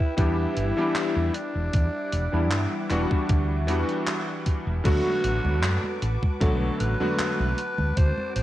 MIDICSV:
0, 0, Header, 1, 6, 480
1, 0, Start_track
1, 0, Key_signature, 2, "major"
1, 0, Tempo, 779221
1, 1071, Time_signature, 4, 2, 24, 8
1, 5191, End_track
2, 0, Start_track
2, 0, Title_t, "Analog synth pad"
2, 0, Program_c, 0, 89
2, 0, Note_on_c, 0, 64, 79
2, 0, Note_on_c, 0, 71, 72
2, 0, Note_on_c, 0, 79, 73
2, 0, Note_on_c, 0, 86, 82
2, 806, Note_off_c, 0, 86, 0
2, 810, Note_off_c, 0, 64, 0
2, 811, Note_off_c, 0, 71, 0
2, 811, Note_off_c, 0, 79, 0
2, 828, Note_on_c, 0, 86, 88
2, 829, Note_on_c, 0, 64, 77
2, 829, Note_on_c, 0, 78, 74
2, 830, Note_on_c, 0, 55, 69
2, 2968, Note_off_c, 0, 55, 0
2, 2968, Note_off_c, 0, 64, 0
2, 2968, Note_off_c, 0, 78, 0
2, 2968, Note_off_c, 0, 86, 0
2, 2985, Note_on_c, 0, 66, 79
2, 2986, Note_on_c, 0, 71, 71
2, 2986, Note_on_c, 0, 81, 71
2, 2986, Note_on_c, 0, 86, 88
2, 4651, Note_off_c, 0, 86, 0
2, 4652, Note_off_c, 0, 71, 0
2, 4670, Note_on_c, 0, 86, 87
2, 4671, Note_on_c, 0, 60, 70
2, 5191, Note_off_c, 0, 60, 0
2, 5191, Note_off_c, 0, 66, 0
2, 5191, Note_off_c, 0, 81, 0
2, 5191, Note_off_c, 0, 86, 0
2, 5191, End_track
3, 0, Start_track
3, 0, Title_t, "Alto saxophone"
3, 0, Program_c, 1, 65
3, 0, Note_on_c, 1, 64, 100
3, 99, Note_off_c, 1, 64, 0
3, 103, Note_on_c, 1, 64, 110
3, 825, Note_on_c, 1, 62, 96
3, 835, Note_off_c, 1, 64, 0
3, 1788, Note_off_c, 1, 62, 0
3, 2989, Note_on_c, 1, 66, 127
3, 3685, Note_off_c, 1, 66, 0
3, 3950, Note_on_c, 1, 69, 94
3, 4188, Note_on_c, 1, 71, 112
3, 4197, Note_off_c, 1, 69, 0
3, 4907, Note_on_c, 1, 72, 119
3, 4916, Note_off_c, 1, 71, 0
3, 5142, Note_off_c, 1, 72, 0
3, 5146, Note_on_c, 1, 72, 114
3, 5191, Note_off_c, 1, 72, 0
3, 5191, End_track
4, 0, Start_track
4, 0, Title_t, "Electric grand piano"
4, 0, Program_c, 2, 2
4, 105, Note_on_c, 2, 52, 84
4, 107, Note_on_c, 2, 55, 79
4, 108, Note_on_c, 2, 59, 81
4, 112, Note_on_c, 2, 62, 77
4, 114, Note_on_c, 2, 67, 95
4, 443, Note_off_c, 2, 52, 0
4, 444, Note_off_c, 2, 55, 0
4, 445, Note_off_c, 2, 59, 0
4, 447, Note_off_c, 2, 62, 0
4, 448, Note_off_c, 2, 67, 0
4, 471, Note_on_c, 2, 52, 93
4, 474, Note_on_c, 2, 55, 87
4, 476, Note_on_c, 2, 59, 82
4, 478, Note_on_c, 2, 62, 83
4, 481, Note_on_c, 2, 67, 100
4, 814, Note_off_c, 2, 52, 0
4, 815, Note_off_c, 2, 55, 0
4, 816, Note_off_c, 2, 59, 0
4, 817, Note_off_c, 2, 62, 0
4, 819, Note_off_c, 2, 67, 0
4, 1431, Note_on_c, 2, 52, 74
4, 1433, Note_on_c, 2, 55, 68
4, 1436, Note_on_c, 2, 59, 67
4, 1438, Note_on_c, 2, 62, 67
4, 1441, Note_on_c, 2, 64, 78
4, 1760, Note_off_c, 2, 52, 0
4, 1761, Note_off_c, 2, 55, 0
4, 1762, Note_off_c, 2, 59, 0
4, 1764, Note_off_c, 2, 62, 0
4, 1765, Note_off_c, 2, 64, 0
4, 1786, Note_on_c, 2, 52, 94
4, 1788, Note_on_c, 2, 55, 82
4, 1790, Note_on_c, 2, 59, 83
4, 1792, Note_on_c, 2, 62, 83
4, 1795, Note_on_c, 2, 66, 102
4, 1895, Note_off_c, 2, 52, 0
4, 1897, Note_off_c, 2, 55, 0
4, 1898, Note_off_c, 2, 59, 0
4, 1899, Note_off_c, 2, 62, 0
4, 1900, Note_off_c, 2, 66, 0
4, 1912, Note_on_c, 2, 52, 75
4, 1914, Note_on_c, 2, 55, 69
4, 1917, Note_on_c, 2, 59, 68
4, 1918, Note_on_c, 2, 62, 68
4, 1921, Note_on_c, 2, 66, 80
4, 2241, Note_off_c, 2, 52, 0
4, 2242, Note_off_c, 2, 55, 0
4, 2243, Note_off_c, 2, 59, 0
4, 2244, Note_off_c, 2, 62, 0
4, 2245, Note_off_c, 2, 66, 0
4, 2261, Note_on_c, 2, 52, 100
4, 2266, Note_on_c, 2, 55, 89
4, 2270, Note_on_c, 2, 59, 89
4, 2274, Note_on_c, 2, 62, 85
4, 2279, Note_on_c, 2, 66, 102
4, 2972, Note_off_c, 2, 52, 0
4, 2974, Note_off_c, 2, 55, 0
4, 2976, Note_off_c, 2, 59, 0
4, 2979, Note_off_c, 2, 62, 0
4, 2980, Note_on_c, 2, 50, 95
4, 2981, Note_off_c, 2, 66, 0
4, 2984, Note_on_c, 2, 54, 85
4, 2989, Note_on_c, 2, 57, 85
4, 2994, Note_on_c, 2, 59, 88
4, 2999, Note_on_c, 2, 66, 107
4, 3705, Note_off_c, 2, 50, 0
4, 3707, Note_off_c, 2, 54, 0
4, 3710, Note_off_c, 2, 57, 0
4, 3712, Note_off_c, 2, 59, 0
4, 3715, Note_off_c, 2, 66, 0
4, 3944, Note_on_c, 2, 50, 90
4, 3947, Note_on_c, 2, 54, 81
4, 3949, Note_on_c, 2, 57, 81
4, 3951, Note_on_c, 2, 59, 77
4, 3954, Note_on_c, 2, 66, 91
4, 4283, Note_off_c, 2, 50, 0
4, 4285, Note_off_c, 2, 54, 0
4, 4286, Note_off_c, 2, 57, 0
4, 4287, Note_off_c, 2, 59, 0
4, 4288, Note_off_c, 2, 66, 0
4, 4312, Note_on_c, 2, 50, 97
4, 4314, Note_on_c, 2, 54, 84
4, 4317, Note_on_c, 2, 57, 84
4, 4319, Note_on_c, 2, 59, 85
4, 4322, Note_on_c, 2, 66, 102
4, 4655, Note_off_c, 2, 50, 0
4, 4656, Note_off_c, 2, 54, 0
4, 4657, Note_off_c, 2, 57, 0
4, 4658, Note_off_c, 2, 59, 0
4, 4659, Note_off_c, 2, 66, 0
4, 5191, End_track
5, 0, Start_track
5, 0, Title_t, "Fretless electric bass"
5, 0, Program_c, 3, 35
5, 110, Note_on_c, 3, 40, 95
5, 275, Note_off_c, 3, 40, 0
5, 350, Note_on_c, 3, 31, 82
5, 435, Note_off_c, 3, 31, 0
5, 717, Note_on_c, 3, 40, 84
5, 793, Note_off_c, 3, 40, 0
5, 957, Note_on_c, 3, 28, 85
5, 1033, Note_off_c, 3, 28, 0
5, 1071, Note_on_c, 3, 40, 99
5, 1155, Note_off_c, 3, 40, 0
5, 1312, Note_on_c, 3, 28, 89
5, 1395, Note_off_c, 3, 28, 0
5, 1437, Note_on_c, 3, 40, 92
5, 1550, Note_off_c, 3, 40, 0
5, 1550, Note_on_c, 3, 43, 77
5, 1635, Note_off_c, 3, 43, 0
5, 1790, Note_on_c, 3, 28, 85
5, 1874, Note_off_c, 3, 28, 0
5, 2030, Note_on_c, 3, 38, 95
5, 2270, Note_off_c, 3, 38, 0
5, 2270, Note_on_c, 3, 40, 92
5, 2355, Note_off_c, 3, 40, 0
5, 2876, Note_on_c, 3, 28, 94
5, 2953, Note_off_c, 3, 28, 0
5, 2990, Note_on_c, 3, 38, 96
5, 3075, Note_off_c, 3, 38, 0
5, 3229, Note_on_c, 3, 33, 89
5, 3314, Note_off_c, 3, 33, 0
5, 3356, Note_on_c, 3, 38, 92
5, 3471, Note_off_c, 3, 38, 0
5, 3471, Note_on_c, 3, 42, 78
5, 3555, Note_off_c, 3, 42, 0
5, 3711, Note_on_c, 3, 33, 80
5, 3795, Note_off_c, 3, 33, 0
5, 3950, Note_on_c, 3, 35, 92
5, 4115, Note_off_c, 3, 35, 0
5, 4190, Note_on_c, 3, 33, 85
5, 4275, Note_off_c, 3, 33, 0
5, 4558, Note_on_c, 3, 35, 90
5, 4633, Note_off_c, 3, 35, 0
5, 4797, Note_on_c, 3, 38, 87
5, 4873, Note_off_c, 3, 38, 0
5, 4911, Note_on_c, 3, 38, 103
5, 4995, Note_off_c, 3, 38, 0
5, 5150, Note_on_c, 3, 33, 92
5, 5191, Note_off_c, 3, 33, 0
5, 5191, End_track
6, 0, Start_track
6, 0, Title_t, "Drums"
6, 109, Note_on_c, 9, 42, 72
6, 110, Note_on_c, 9, 36, 115
6, 170, Note_off_c, 9, 42, 0
6, 171, Note_off_c, 9, 36, 0
6, 349, Note_on_c, 9, 42, 64
6, 410, Note_off_c, 9, 42, 0
6, 588, Note_on_c, 9, 39, 110
6, 588, Note_on_c, 9, 42, 79
6, 650, Note_off_c, 9, 39, 0
6, 650, Note_off_c, 9, 42, 0
6, 828, Note_on_c, 9, 42, 64
6, 889, Note_off_c, 9, 42, 0
6, 1068, Note_on_c, 9, 42, 80
6, 1070, Note_on_c, 9, 36, 109
6, 1129, Note_off_c, 9, 42, 0
6, 1132, Note_off_c, 9, 36, 0
6, 1309, Note_on_c, 9, 42, 69
6, 1370, Note_off_c, 9, 42, 0
6, 1548, Note_on_c, 9, 39, 117
6, 1548, Note_on_c, 9, 42, 78
6, 1610, Note_off_c, 9, 39, 0
6, 1610, Note_off_c, 9, 42, 0
6, 1789, Note_on_c, 9, 39, 34
6, 1789, Note_on_c, 9, 42, 64
6, 1850, Note_off_c, 9, 39, 0
6, 1850, Note_off_c, 9, 42, 0
6, 1916, Note_on_c, 9, 36, 58
6, 1978, Note_off_c, 9, 36, 0
6, 2028, Note_on_c, 9, 42, 77
6, 2030, Note_on_c, 9, 36, 115
6, 2090, Note_off_c, 9, 42, 0
6, 2092, Note_off_c, 9, 36, 0
6, 2268, Note_on_c, 9, 42, 68
6, 2330, Note_off_c, 9, 42, 0
6, 2395, Note_on_c, 9, 42, 35
6, 2457, Note_off_c, 9, 42, 0
6, 2509, Note_on_c, 9, 39, 117
6, 2509, Note_on_c, 9, 42, 78
6, 2570, Note_off_c, 9, 39, 0
6, 2570, Note_off_c, 9, 42, 0
6, 2748, Note_on_c, 9, 42, 67
6, 2750, Note_on_c, 9, 36, 59
6, 2810, Note_off_c, 9, 42, 0
6, 2812, Note_off_c, 9, 36, 0
6, 2989, Note_on_c, 9, 42, 83
6, 2989, Note_on_c, 9, 49, 108
6, 2989, Note_on_c, 9, 63, 47
6, 2990, Note_on_c, 9, 36, 115
6, 3050, Note_off_c, 9, 42, 0
6, 3050, Note_off_c, 9, 49, 0
6, 3050, Note_off_c, 9, 63, 0
6, 3052, Note_off_c, 9, 36, 0
6, 3115, Note_on_c, 9, 63, 29
6, 3177, Note_off_c, 9, 63, 0
6, 3228, Note_on_c, 9, 42, 72
6, 3290, Note_off_c, 9, 42, 0
6, 3356, Note_on_c, 9, 63, 54
6, 3418, Note_off_c, 9, 63, 0
6, 3470, Note_on_c, 9, 39, 121
6, 3470, Note_on_c, 9, 42, 83
6, 3470, Note_on_c, 9, 63, 48
6, 3531, Note_off_c, 9, 39, 0
6, 3531, Note_off_c, 9, 42, 0
6, 3531, Note_off_c, 9, 63, 0
6, 3596, Note_on_c, 9, 63, 29
6, 3657, Note_off_c, 9, 63, 0
6, 3710, Note_on_c, 9, 42, 66
6, 3771, Note_off_c, 9, 42, 0
6, 3835, Note_on_c, 9, 63, 57
6, 3837, Note_on_c, 9, 36, 62
6, 3897, Note_off_c, 9, 63, 0
6, 3898, Note_off_c, 9, 36, 0
6, 3950, Note_on_c, 9, 42, 77
6, 3950, Note_on_c, 9, 63, 46
6, 3951, Note_on_c, 9, 36, 125
6, 4011, Note_off_c, 9, 42, 0
6, 4011, Note_off_c, 9, 63, 0
6, 4012, Note_off_c, 9, 36, 0
6, 4075, Note_on_c, 9, 63, 29
6, 4137, Note_off_c, 9, 63, 0
6, 4189, Note_on_c, 9, 42, 74
6, 4251, Note_off_c, 9, 42, 0
6, 4316, Note_on_c, 9, 63, 57
6, 4377, Note_off_c, 9, 63, 0
6, 4430, Note_on_c, 9, 39, 121
6, 4430, Note_on_c, 9, 42, 85
6, 4430, Note_on_c, 9, 63, 49
6, 4492, Note_off_c, 9, 39, 0
6, 4492, Note_off_c, 9, 42, 0
6, 4492, Note_off_c, 9, 63, 0
6, 4556, Note_on_c, 9, 63, 28
6, 4618, Note_off_c, 9, 63, 0
6, 4669, Note_on_c, 9, 42, 70
6, 4731, Note_off_c, 9, 42, 0
6, 4794, Note_on_c, 9, 63, 58
6, 4856, Note_off_c, 9, 63, 0
6, 4909, Note_on_c, 9, 42, 84
6, 4909, Note_on_c, 9, 63, 48
6, 4911, Note_on_c, 9, 36, 123
6, 4971, Note_off_c, 9, 42, 0
6, 4971, Note_off_c, 9, 63, 0
6, 4973, Note_off_c, 9, 36, 0
6, 5036, Note_on_c, 9, 63, 28
6, 5098, Note_off_c, 9, 63, 0
6, 5149, Note_on_c, 9, 42, 71
6, 5191, Note_off_c, 9, 42, 0
6, 5191, End_track
0, 0, End_of_file